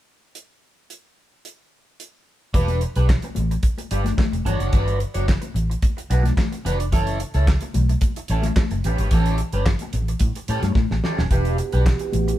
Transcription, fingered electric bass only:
2.54 2.83 E1 loud
2.96 3.15 B1 medium
3.37 3.56 A1 medium
3.91 4.10 G1 medium
4.33 4.42 E1 medium
4.45 4.56 G1 loud
4.60 4.69 F#1 medium
4.73 5.02 G1 loud
5.15 5.34 F#1 medium
5.55 5.74 A1 medium
6.10 6.29 B1 loud
6.65 6.93 F1 medium
6.93 7.22 F#1 loud
7.35 7.54 C#2 medium
7.75 7.94 B1 medium
8.30 8.49 A1 medium
8.71 8.80 F#1 medium
8.85 8.95 A1 medium
8.99 9.08 G#1 medium
9.11 9.41 A1 loud
9.53 9.72 G1 medium
9.94 10.13 A1 medium
10.21 10.31 A2 medium
10.49 10.59 A2 medium
10.63 10.72 G2 medium
10.75 10.86 A2 medium
10.91 11.00 A1 medium
11.18 11.27 D#1 medium
11.31 11.60 E1 loud
11.73 11.92 B1 medium
12.14 12.32 A1 medium

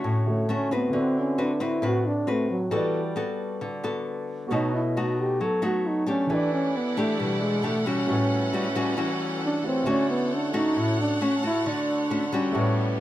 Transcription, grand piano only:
0.00 0.23 D3 medium
0.00 0.24 E4 medium
0.00 0.24 F#4 medium
0.00 0.25 A4 medium
0.00 0.26 C#5 medium
0.25 0.88 D3 soft
0.25 0.91 E4 soft
0.25 0.92 F#4 soft
0.25 0.93 A4 soft
0.25 0.94 C#5 soft
0.90 2.67 D3 medium
0.90 2.67 C4 soft
0.90 2.68 E4 soft
0.94 2.69 F#4 soft
0.94 2.69 A4 soft
0.94 2.70 B4 medium
2.70 4.46 G3 soft
2.70 4.46 F#4 soft
2.70 4.48 A4 soft
2.70 4.48 B4 soft
2.76 4.50 D5 medium
4.47 6.24 B3 medium
4.47 6.25 F#4 soft
4.47 6.26 A4 soft
4.51 6.26 C#5 soft
4.51 6.27 D#5 medium
6.27 8.03 E3 soft
6.27 8.05 G4 soft
6.27 8.05 A4 soft
6.32 8.06 B4 soft
6.32 8.07 D5 medium
8.05 9.60 A3 soft
8.05 9.61 E4 soft
8.05 9.61 F#4 soft
8.10 9.63 B4 soft
8.10 9.63 C#5 medium
9.63 9.86 A3 soft
9.63 9.83 E4 soft
9.63 9.85 F#4 soft
9.63 9.87 G4 soft
9.63 9.87 B4 soft
9.63 9.88 C#5 soft
9.83 12.49 D3 medium
9.83 12.50 E4 soft
9.83 12.51 F#4 soft
9.88 12.51 A4 soft
9.88 12.52 C#5 medium
12.52 13.00 A3 medium
12.52 13.00 E4 medium
12.52 13.00 F#4 medium
12.56 13.00 B4 medium
12.56 13.00 C#5 medium

